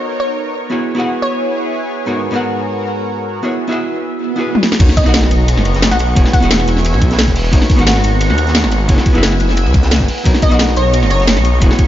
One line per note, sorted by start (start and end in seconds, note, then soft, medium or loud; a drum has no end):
0.00 0.67 B3 medium
0.00 0.68 B3 medium
0.00 0.68 D#4 medium
0.00 0.70 D#4 medium
0.00 0.69 F#4 medium
0.00 0.70 A#4 medium
0.00 3.40 C#5 medium
0.00 0.70 F#5 medium
0.20 0.40 C#5 medium
0.70 0.94 B3 medium
0.70 3.41 B3 medium
0.70 0.95 E4 medium
0.70 2.06 E4 medium
0.70 0.95 F#4 medium
0.70 4.08 G#4 medium
0.70 0.95 G#4 medium
0.70 0.95 C#5 medium
0.95 2.04 B3 medium
0.95 2.05 E4 medium
0.95 2.05 F#4 medium
0.95 2.06 G#4 medium
1.00 2.07 F#5 medium
1.22 1.70 C#5 medium
2.06 2.30 G#2 medium
2.06 2.30 B3 medium
2.06 2.31 D#4 medium
2.06 4.10 F#4 medium
2.06 2.31 F#4 medium
2.06 3.42 A#4 medium
2.06 2.32 A#4 medium
2.06 2.32 C#5 medium
2.31 3.40 G#2 medium
2.31 3.41 B3 medium
2.31 2.35 D#4 medium
2.31 3.42 F#4 medium
2.31 3.42 A#4 medium
2.36 3.43 F#5 medium
3.43 3.66 B3 medium
3.43 4.11 B3 medium
3.43 3.67 E4 medium
3.43 3.68 F#4 medium
3.43 3.68 G#4 medium
3.43 3.68 C#5 medium
3.43 4.11 E5 medium
3.68 4.35 B3 medium
3.68 4.36 E4 medium
3.68 4.36 F#4 medium
3.68 4.37 G#4 medium
3.72 4.37 E5 medium
4.12 swell medium
4.36 4.77 B3 medium
4.36 4.78 E4 medium
4.36 4.78 F#4 medium
4.36 4.79 G#4 medium
4.41 4.79 B4 medium
4.55 high tom soft
4.63 snare medium
4.72 snare medium
4.79 4.88 B1 loud
4.79 5.02 B3 medium
4.79 11.87 B3 medium
4.79 5.04 D#4 medium
4.79 5.04 F#4 medium
4.79 5.04 A#4 medium
4.79 5.05 C#5 medium
4.79 6.15 D#5 medium
4.79 6.15 A#5 medium
4.79 7.50 C#6 medium
4.79 kick loud
4.79 closed hi-hat loud
4.79 crash loud
4.79 ride medium
4.79 sub drop medium
4.89 snare soft
4.89 ride soft
4.97 5.03 D#5 medium
4.97 kick loud
4.97 closed hi-hat medium
4.97 ride medium
5.04 5.30 B1 medium
5.04 6.13 B3 medium
5.04 6.14 D#4 medium
5.04 6.14 F#4 medium
5.04 6.15 A#4 medium
5.04 5.11 D#5 medium
5.04 closed hi-hat soft
5.09 6.16 F#5 loud
5.14 snare loud
5.14 closed hi-hat loud
5.14 ride medium
5.23 snare medium
5.23 snare soft
5.31 5.59 B1 loud
5.31 closed hi-hat medium
5.31 ride medium
5.48 closed hi-hat loud
5.48 ride medium
5.57 5.93 F#1 loud
5.57 snare soft
5.65 closed hi-hat medium
5.65 ride medium
5.74 snare soft
5.74 closed hi-hat soft
5.82 snare loud
5.82 closed hi-hat medium
5.82 ride loud
5.91 6.15 B1 medium
5.91 6.20 F#5 medium
5.91 snare soft
5.91 closed hi-hat soft
5.99 closed hi-hat medium
5.99 ride medium
6.15 6.25 E1 loud
6.15 6.39 B3 medium
6.15 6.40 E4 medium
6.15 6.40 F#4 medium
6.15 6.41 G#4 medium
6.15 6.41 C#5 medium
6.15 7.51 E5 medium
6.15 7.51 G#5 medium
6.15 kick loud
6.15 closed hi-hat medium
6.15 ride medium
6.25 snare medium
6.25 snare soft
6.33 6.60 F#5 medium
6.33 kick loud
6.33 closed hi-hat medium
6.33 ride medium
6.40 6.66 E1 medium
6.40 7.50 B3 medium
6.40 7.50 E4 medium
6.40 7.51 F#4 medium
6.40 7.51 G#4 medium
6.40 closed hi-hat soft
6.40 ride soft
6.45 7.52 F#5 loud
6.51 snare loud
6.51 closed hi-hat medium
6.51 ride medium
6.60 snare soft
6.60 ride soft
6.68 6.95 E1 loud
6.68 closed hi-hat medium
6.68 ride medium
6.77 snare soft
6.85 closed hi-hat medium
6.85 ride medium
6.94 7.29 B1 loud
6.94 ride soft
7.02 kick loud
7.02 closed hi-hat medium
7.02 ride medium
7.11 snare medium
7.11 closed hi-hat soft
7.19 snare loud
7.19 closed hi-hat loud
7.19 ride medium
7.28 7.51 E1 medium
7.28 kick medium
7.28 snare medium
7.28 closed hi-hat soft
7.36 closed hi-hat medium
7.36 open hi-hat medium
7.44 ride soft
7.52 7.61 G#1 loud
7.52 7.75 B3 medium
7.52 7.76 D#4 medium
7.52 7.77 F#4 medium
7.52 7.77 A#4 medium
7.52 7.77 C#5 medium
7.52 10.23 F#5 medium
7.52 8.88 A#5 medium
7.52 8.88 C#6 medium
7.52 kick loud
7.52 closed hi-hat medium
7.52 ride medium
7.62 snare soft
7.62 ride soft
7.70 kick loud
7.70 closed hi-hat medium
7.70 ride medium
7.76 8.03 G#1 medium
7.76 8.86 B3 medium
7.76 8.87 D#4 medium
7.76 8.87 F#4 medium
7.76 8.88 A#4 medium
7.76 closed hi-hat soft
7.81 8.88 F#5 loud
7.87 snare loud
7.87 closed hi-hat medium
7.87 ride medium
7.96 snare medium
7.96 snare soft
8.04 8.32 G#1 loud
8.04 closed hi-hat medium
8.04 ride medium
8.21 closed hi-hat medium
8.21 ride medium
8.30 8.66 D#2 loud
8.30 snare soft
8.38 closed hi-hat medium
8.38 ride medium
8.47 snare soft
8.47 closed hi-hat soft
8.55 snare loud
8.55 closed hi-hat medium
8.55 ride medium
8.64 8.88 G#1 medium
8.64 snare soft
8.64 closed hi-hat soft
8.72 closed hi-hat medium
8.72 ride medium
8.88 8.97 F#1 loud
8.88 9.12 B3 medium
8.88 9.13 E4 medium
8.88 9.13 F#4 medium
8.88 9.13 G#4 medium
8.88 9.14 C#5 medium
8.88 10.24 G#5 medium
8.88 10.24 E6 medium
8.88 kick loud
8.88 closed hi-hat medium
8.88 ride medium
8.98 snare medium
8.98 snare soft
9.06 kick loud
9.06 closed hi-hat medium
9.06 ride medium
9.13 9.39 F#1 medium
9.13 10.22 B3 medium
9.13 10.23 E4 medium
9.13 10.24 F#4 medium
9.13 10.24 G#4 medium
9.13 closed hi-hat soft
9.13 ride soft
9.18 10.25 E5 loud
9.23 snare loud
9.23 closed hi-hat medium
9.23 ride medium
9.32 snare soft
9.32 ride soft
9.40 9.68 F#1 loud
9.40 closed hi-hat medium
9.40 ride medium
9.49 snare soft
9.57 closed hi-hat medium
9.57 ride medium
9.66 10.02 C#2 loud
9.66 ride soft
9.74 kick loud
9.74 closed hi-hat medium
9.74 ride medium
9.83 snare medium
9.83 closed hi-hat soft
9.91 snare loud
9.91 closed hi-hat medium
9.91 ride medium
10.00 10.08 F#1 loud
10.00 kick medium
10.00 snare medium
10.00 closed hi-hat soft
10.08 closed hi-hat medium
10.08 open hi-hat medium
10.18 ride soft
10.24 10.34 B1 loud
10.24 10.48 B3 medium
10.24 10.49 D#4 medium
10.24 10.49 F#4 medium
10.24 10.50 A#4 medium
10.24 10.50 C#5 medium
10.24 11.60 D#5 medium
10.24 11.60 A#5 medium
10.24 11.87 C#6 medium
10.24 kick loud
10.24 closed hi-hat medium
10.24 ride medium
10.35 snare soft
10.35 ride soft
10.42 10.48 D#5 medium
10.42 kick loud
10.42 closed hi-hat medium
10.42 ride medium
10.49 10.75 B1 medium
10.49 11.59 B3 medium
10.49 11.59 D#4 medium
10.49 11.60 F#4 medium
10.49 11.61 A#4 medium
10.49 10.57 D#5 medium
10.49 closed hi-hat soft
10.54 11.61 F#5 loud
10.59 snare loud
10.59 closed hi-hat medium
10.59 ride medium
10.68 snare medium
10.68 snare soft
10.76 11.04 B1 loud
10.76 10.97 C#5 medium
10.76 closed hi-hat medium
10.76 ride medium
10.94 closed hi-hat medium
10.94 ride medium
11.03 11.38 F#1 loud
11.03 snare soft
11.10 11.31 C#5 medium
11.10 closed hi-hat medium
11.10 ride medium
11.20 snare soft
11.20 closed hi-hat soft
11.28 snare loud
11.28 closed hi-hat medium
11.28 ride medium
11.37 11.60 B1 medium
11.37 snare soft
11.37 closed hi-hat soft
11.45 closed hi-hat medium
11.45 ride medium
11.61 11.70 E1 loud
11.61 11.84 B3 medium
11.61 11.85 E4 medium
11.61 11.86 F#4 medium
11.61 11.86 G#4 medium
11.61 11.86 C#5 medium
11.61 11.87 E5 medium
11.61 11.87 G#5 medium
11.61 kick loud
11.61 closed hi-hat medium
11.61 ride medium
11.71 snare medium
11.71 snare soft
11.79 kick loud
11.79 closed hi-hat medium
11.79 ride medium